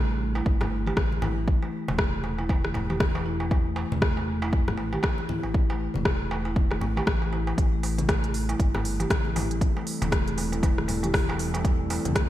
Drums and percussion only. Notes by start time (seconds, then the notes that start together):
0.35 darbuka ka, darbuka tek
0.46 kick
0.61 cross-stick, darbuka tek, low conga
0.87 mid tom, darbuka ka
0.97 kick, cross-stick, high conga, darbuka tek
1.12 high conga
1.22 mid tom, darbuka tek, low conga
1.48 kick
1.63 darbuka tek
1.88 high conga, darbuka tek, darbuka dum
1.98 kick, cross-stick
2.24 darbuka tek
2.38 darbuka ka
2.49 kick, mid tom, darbuka tek
2.65 cross-stick, mid tom
2.74 darbuka ka, low conga
2.90 mid tom, darbuka tek
3.00 kick, cross-stick, high conga
3.15 darbuka ka, darbuka tek
3.40 darbuka ka
3.51 kick, darbuka tek
3.76 darbuka tek
3.92 high conga, darbuka dum
4.02 kick, cross-stick
4.17 darbuka tek
4.42 darbuka ka, darbuka tek
4.53 kick
4.68 cross-stick, low conga
4.78 darbuka tek
4.93 mid tom, darbuka ka
5.03 kick, cross-stick, darbuka tek, high conga
5.18 high conga
5.29 mid tom, low conga
5.43 darbuka tek
5.54 kick
5.70 darbuka tek
5.94 high conga, darbuka dum
6.05 kick, cross-stick, darbuka tek
6.31 darbuka tek
6.45 darbuka ka
6.56 kick, mid tom, high conga
6.71 cross-stick, mid tom, darbuka tek
6.81 darbuka ka, low conga
6.97 mid tom, darbuka tek
7.07 kick, cross-stick, high conga
7.22 darbuka ka
7.33 darbuka tek
7.47 darbuka ka
7.58 kick, closed hi-hat
7.83 open hi-hat, darbuka tek
7.98 closed hi-hat, high conga, darbuka dum
8.09 kick, cross-stick, closed hi-hat, darbuka tek
8.24 closed hi-hat
8.34 open hi-hat
8.49 closed hi-hat, darbuka ka, darbuka tek
8.60 kick, closed hi-hat
8.74 cross-stick, darbuka tek, low conga
8.85 open hi-hat
9.00 closed hi-hat, mid tom, darbuka ka
9.10 kick, cross-stick, closed hi-hat, high conga, darbuka tek
9.25 high conga
9.36 open hi-hat, mid tom, darbuka tek, low conga
9.51 closed hi-hat
9.61 kick, closed hi-hat
9.77 darbuka tek
9.87 open hi-hat
10.02 closed hi-hat, darbuka tek, high conga, darbuka dum
10.12 kick, cross-stick, closed hi-hat
10.28 closed hi-hat
10.38 open hi-hat, darbuka tek
10.52 closed hi-hat, darbuka ka
10.63 kick, closed hi-hat, mid tom, darbuka tek
10.78 cross-stick, mid tom
10.88 open hi-hat, darbuka ka, low conga
11.03 closed hi-hat, mid tom, darbuka tek
11.14 kick, cross-stick, open hi-hat, high conga
11.29 darbuka ka, darbuka tek
11.39 open hi-hat
11.54 closed hi-hat, darbuka ka
11.65 kick, closed hi-hat, darbuka tek
11.90 open hi-hat, darbuka tek
12.05 closed hi-hat, high conga, darbuka dum
12.15 kick, cross-stick, closed hi-hat